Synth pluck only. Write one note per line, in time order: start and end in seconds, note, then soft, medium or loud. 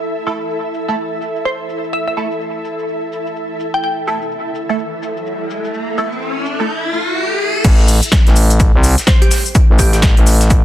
1.45 1.57 C5 medium
1.93 2.02 E5 medium
2.07 2.14 E5 medium
3.74 3.80 G5 medium
3.84 3.93 G5 medium
9.07 9.19 C5 medium
9.22 9.31 G4 medium
9.79 9.88 G4 medium
9.93 9.99 G4 medium